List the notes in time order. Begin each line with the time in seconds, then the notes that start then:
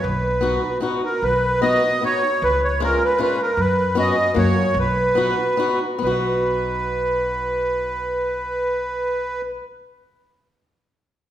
0.01 B1 B4
0.41 B3 D#4 F#4
0.80 B3 D#4 F#4
1.04 A#4
1.22 B1 B4
1.62 B3 D#4 F#4 D#5
2.01 B3 D#4 F#4 C#5
2.42 C#2 B4
2.64 C#5
2.80 G#3 C#4 F4 A#4
3.05 B4
3.18 G#3 C#4 F4 B4
3.42 A#4
3.57 F#2 B4
3.95 B3 C#4 F#4 D#5
4.34 F#2 A#3 C#4 F#4
4.38 C#5
4.74 B1
4.79 B4
5.15 B3 D#4 F#4
5.57 B3 D#4 F#4
5.98 B1 B3
6.03 D#4 F#4 B4